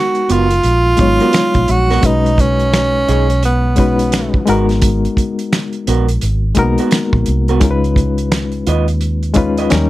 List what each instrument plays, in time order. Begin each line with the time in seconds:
Already playing: reed electric piano G#3 B3 D#4 F#4 A#4, tenor saxophone F#4
0.15 closed hi-hat
0.29 fingered electric bass F#1, clean electric guitar B3 F#4 A#4, tenor saxophone F4, closed hi-hat
0.51 closed hi-hat
0.64 fingered electric bass A#1, closed hi-hat
0.97 fingered electric bass G#1, reed electric piano F#3 G#3 B3 D#4 C#5, kick, closed hi-hat
1.20 clean electric guitar B3 F#4 A#4, closed hi-hat
1.33 finger snap, snare, closed hi-hat
1.54 fingered electric bass A#1, kick, closed hi-hat
1.68 fingered electric bass A#1, tenor saxophone F#4, closed hi-hat
1.90 clean electric guitar B3 F#4 A#4, snare, closed hi-hat
2.01 fingered electric bass B1, reed electric piano G#3 C#4 D#4 F#4, kick, closed hi-hat
2.05 tenor saxophone D#4, reed electric piano B4
2.26 closed hi-hat
2.38 tenor saxophone C#4, kick, closed hi-hat
2.60 closed hi-hat
2.73 finger snap, snare, closed hi-hat
3.08 fingered electric bass B1, clean electric guitar D#4 G#4 C#5, closed hi-hat
3.30 closed hi-hat
3.43 tenor saxophone B3, closed hi-hat
3.76 reed electric piano G#3 C#4 D#4 F#4 B4, kick, closed hi-hat
3.99 closed hi-hat
4.12 finger snap, snare, closed hi-hat
4.34 kick
4.46 fingered electric bass G#1, reed electric piano G#3 B3 D#4 F#4 A#4, clean electric guitar B3 F#4 A#4, closed hi-hat
4.69 snare, closed hi-hat
4.82 kick, closed hi-hat
5.05 closed hi-hat
5.17 kick, closed hi-hat
5.39 closed hi-hat
5.53 finger snap, snare, closed hi-hat
5.73 closed hi-hat
5.87 fingered electric bass A#1, clean electric guitar B3 F#4 A#4, closed hi-hat
6.08 closed hi-hat
6.21 fingered electric bass G#1, closed hi-hat
6.55 fingered electric bass B1, reed electric piano G#3 A#3 D#4 F#4 A#4, kick, closed hi-hat
6.62 reed electric piano B3
6.78 clean electric guitar B3 F#4 A#4, closed hi-hat
6.91 finger snap, snare, closed hi-hat
7.13 fingered electric bass A#1, kick
7.26 fingered electric bass C2, closed hi-hat
7.48 clean electric guitar B3 F#4 A#4, closed hi-hat
7.60 fingered electric bass C#2, reed electric piano G#3 C#4 D#4 F4, kick, closed hi-hat
7.64 reed electric piano A#4
7.71 reed electric piano B4
7.84 closed hi-hat
7.96 kick, closed hi-hat
8.18 closed hi-hat
8.32 finger snap, snare, closed hi-hat
8.52 closed hi-hat
8.67 fingered electric bass D#2, clean electric guitar F4 B4 D#5, closed hi-hat
8.88 closed hi-hat
9.01 closed hi-hat
9.23 closed hi-hat
9.34 reed electric piano G#3 C#4 D#4 F4 B4, kick, closed hi-hat
9.57 clean electric guitar F4 B4 D#5, closed hi-hat
9.68 fingered electric bass D#2, reed electric piano F#3 A#3 C#4 D#4 A#4, finger snap, snare, closed hi-hat
9.75 reed electric piano G3